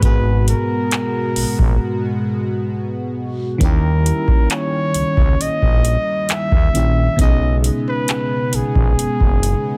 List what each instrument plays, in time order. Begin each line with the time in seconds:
0.00 fm bass G#1, fm electric piano G#2 G#3 B3, kick, closed hi-hat
0.04 fm electric piano F#4 G#4, flugelhorn B4
0.48 flugelhorn A#4, closed hi-hat
0.91 clap, closed hi-hat
1.36 fm bass A#1, open hi-hat
1.59 fm bass A#1, kick
3.58 fm bass D#2, fm electric piano D#3 A#3 C#4, analog synth pad D#3 G3 C#4, kick, closed hi-hat
3.62 fm electric piano E4 G4, flugelhorn A#4
4.06 closed hi-hat
4.28 kick
4.50 flugelhorn C#5, clap, closed hi-hat
4.94 fm bass C#2, closed hi-hat
5.17 fm bass C#2, kick
5.40 fm bass A#1, flugelhorn D#5, closed hi-hat
5.62 fm bass A#1, kick
5.85 closed hi-hat
6.29 flugelhorn E5, clap, closed hi-hat
6.52 fm bass D#2, kick
6.73 fm bass A#1, fm electric piano D#3 A#3 C#4 E4 G4, closed hi-hat
7.16 fm bass B1, fm electric piano B2 B3 C#4, kick, closed hi-hat
7.21 fm electric piano D#4 G#4, flugelhorn D#5
7.64 closed hi-hat
7.88 flugelhorn B4
8.08 clap, closed hi-hat
8.53 fm bass A#1, flugelhorn G#4, closed hi-hat
8.76 fm bass A#1, kick
8.98 fm bass F#1, closed hi-hat
9.21 fm bass F#1, kick
9.43 closed hi-hat